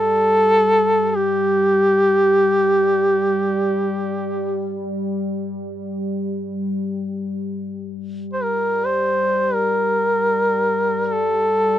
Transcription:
0.00 7.22 G3 soft
0.00 1.10 A4 loud
1.10 1.18 A4 medium
1.17 4.79 G4 medium
7.23 11.79 G3 soft
8.33 8.45 C5 soft
8.43 8.87 A#4 medium
8.86 9.55 C5 medium
9.54 11.07 A#4 medium
11.07 11.14 A#4 soft
11.13 11.79 A4 medium

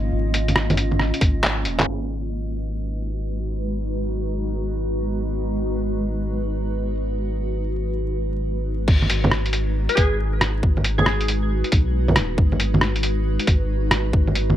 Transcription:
0.00 0.11 G#1 loud
0.00 1.83 A#3 medium
0.00 1.83 C#4 medium
0.00 1.83 F4 medium
0.00 1.84 D#5 medium
0.12 1.12 G#1 loud
0.34 closed hi-hat medium
0.48 closed hi-hat soft
0.48 low bongo soft
0.56 cross-stick loud
0.70 closed hi-hat soft
0.70 low bongo medium
0.77 closed hi-hat medium
0.91 low bongo soft
0.99 cross-stick medium
1.14 closed hi-hat soft
1.21 1.67 G#1 medium
1.21 kick loud
1.21 closed hi-hat medium
1.43 cross-stick loud
1.43 clap loud
1.65 1.86 D#1 medium
1.65 closed hi-hat medium
1.79 clap medium
1.79 low bongo medium
1.86 8.86 G#1 medium
1.86 8.83 G#3 medium
1.86 8.83 D#4 medium
1.86 8.84 F#4 medium
1.86 8.84 B4 medium
8.87 9.88 G#1 loud
8.87 14.57 G#3 medium
8.87 14.57 D#4 medium
8.87 14.57 F#4 medium
8.87 14.57 B4 medium
8.87 kick loud
8.87 crash loud
9.02 low bongo soft
9.10 closed hi-hat medium
9.24 low bongo medium
9.32 cross-stick loud
9.46 closed hi-hat soft
9.53 closed hi-hat medium
9.89 9.96 B4 medium
9.89 closed hi-hat soft
9.95 10.62 G#1 loud
9.95 10.20 G#4 medium
9.95 kick loud
9.95 closed hi-hat medium
10.41 cross-stick loud
10.41 closed hi-hat medium
10.63 11.63 G#1 loud
10.63 kick loud
10.77 low bongo soft
10.84 closed hi-hat medium
10.98 11.42 G#4 medium
10.98 low bongo medium
11.06 cross-stick loud
11.21 closed hi-hat soft
11.28 closed hi-hat medium
11.64 closed hi-hat soft
11.72 12.18 B1 medium
11.72 kick loud
11.72 closed hi-hat medium
12.08 low bongo medium
12.16 12.37 D#1 medium
12.16 cross-stick loud
12.16 closed hi-hat medium
12.16 low bongo soft
12.38 13.38 G#1 medium
12.38 kick loud
12.52 low bongo soft
12.60 closed hi-hat medium
12.74 low bongo medium
12.81 cross-stick loud
12.96 closed hi-hat soft
13.03 closed hi-hat medium
13.39 closed hi-hat soft
13.47 14.12 G#1 loud
13.47 kick loud
13.47 closed hi-hat medium
13.91 cross-stick loud
13.91 closed hi-hat medium
14.13 14.57 G#1 loud
14.13 kick loud
14.27 low bongo soft
14.35 closed hi-hat medium
14.50 low bongo medium

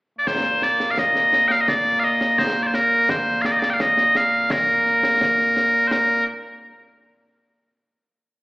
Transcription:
0.19 6.25 A#2 medium
0.19 6.25 A#3 medium
0.19 0.27 D5 medium
0.27 0.63 C5 medium
0.27 concert bass drum medium
0.27 snare medium
0.62 0.91 D5 medium
0.62 snare medium
0.80 snare medium
0.91 0.99 F5 medium
0.97 1.48 D#5 loud
0.97 concert bass drum soft
0.97 snare medium
1.15 snare medium
1.33 snare medium
1.48 1.61 F5 loud
1.48 1.52 G5 loud
1.48 snare medium
1.61 1.68 D#5 medium
1.68 2.00 D5 loud
1.68 concert bass drum medium
1.68 snare medium
2.00 2.04 F5 loud
2.00 snare soft
2.04 2.38 D#5 loud
2.21 snare medium
2.38 2.63 C5 medium
2.38 concert bass drum soft
2.38 snare medium
2.56 snare soft
2.63 2.67 D5 medium
2.67 2.75 C5 medium
2.74 3.10 A#4 medium
2.74 snare medium
3.09 3.42 C5 medium
3.09 concert bass drum medium
3.09 snare loud
3.42 3.46 F5 medium
3.42 snare medium
3.46 3.52 D5 medium
3.52 3.59 D#5 medium
3.59 3.70 D5 medium
3.59 snare medium
3.70 3.81 F5 medium
3.70 3.74 G5 medium
3.80 4.17 D#5 medium
3.80 concert bass drum medium
3.80 snare medium
3.97 snare medium
4.15 4.51 F5 loud
4.15 snare medium
4.50 5.88 A#4 medium
4.50 concert bass drum medium
4.50 snare loud
4.86 snare soft
5.03 snare medium
5.21 concert bass drum soft
5.21 snare medium
5.39 snare soft
5.57 snare medium
5.88 5.92 C5 medium
5.88 snare loud
5.92 6.25 A#4 medium

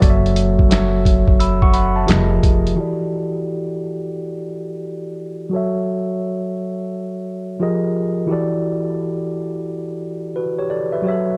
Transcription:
0.00 2.05 F#1 loud
0.00 0.62 F#3 medium
0.00 0.62 F#4 medium
0.00 0.62 A4 medium
0.00 0.63 C#5 medium
0.00 0.11 D5 medium
0.00 kick loud
0.00 closed hi-hat medium
0.10 0.67 E5 medium
0.26 closed hi-hat soft
0.36 closed hi-hat medium
0.59 kick medium
0.69 1.60 F#3 medium
0.69 1.61 F#4 medium
0.69 1.61 A4 medium
0.69 1.61 C#5 medium
0.69 1.40 E5 medium
0.69 snare loud
0.69 closed hi-hat medium
0.73 finger snap medium
1.05 kick medium
1.05 closed hi-hat medium
1.28 kick medium
1.40 1.62 B5 medium
1.40 1.61 E6 medium
1.40 closed hi-hat medium
1.62 1.73 F#5 medium
1.62 1.74 C#6 medium
1.62 kick medium
1.74 1.96 F#5 medium
1.74 1.95 B5 medium
1.74 closed hi-hat medium
1.96 2.30 E5 soft
1.96 2.29 A5 medium
2.06 2.39 F1 loud
2.06 2.68 F3 medium
2.06 2.68 F4 medium
2.06 2.69 G4 medium
2.06 2.69 G#4 medium
2.06 2.69 A#4 medium
2.06 2.70 D#5 medium
2.06 closed hi-hat medium
2.11 finger snap medium
2.11 snare loud
2.43 2.73 F1 medium
2.43 kick medium
2.43 closed hi-hat medium
2.67 closed hi-hat soft
2.74 5.48 E3 medium
2.74 5.49 E4 medium
2.74 5.49 F#4 medium
2.78 5.50 G4 medium
2.78 5.50 A4 medium
2.78 5.51 D5 medium
5.49 7.55 F#3 medium
5.49 7.55 F#4 medium
5.49 7.56 A4 medium
5.55 7.57 C#5 medium
5.55 7.58 E5 medium
7.60 8.29 F3 medium
7.60 8.29 F4 medium
7.60 8.29 G4 medium
7.60 8.30 G#4 medium
7.60 8.30 A#4 medium
7.60 8.31 D#5 medium
8.26 11.00 E3 medium
8.26 11.00 E4 medium
8.26 10.32 F#4 medium
8.26 10.33 G4 medium
8.31 10.33 A4 medium
8.31 10.34 D5 medium
10.36 10.58 F#4 soft
10.36 10.58 B4 medium
10.59 10.70 G4 medium
10.59 10.70 C#5 medium
10.70 10.92 A4 medium
10.70 10.92 D5 medium
10.92 11.26 B4 soft
10.92 11.07 E5 medium
11.02 11.37 F#3 medium
11.02 11.37 F#4 medium
11.02 11.14 G4 medium
11.07 11.37 C#5 medium
11.07 11.37 E5 medium
11.12 11.37 A4 medium

